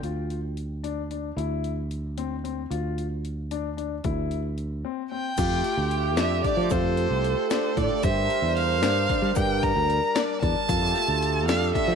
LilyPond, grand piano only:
\new Staff \with { instrumentName = "Grand piano" } { \time 5/8 \key f \major \tempo 4 = 113 f'4 r8 d'8 d'8 | e'4 r8 c'8 c'8 | f'4 r8 d'8 d'8 | e'4 r8 c'8 c'8 |
f'4 r8 d'8 d'8 | f'4 r8 d'8 d'8 | g'4 r8 d'8 d'8 | g'4 r8 d'8 d'8 |
f'4 r8 d'8 d'8 | }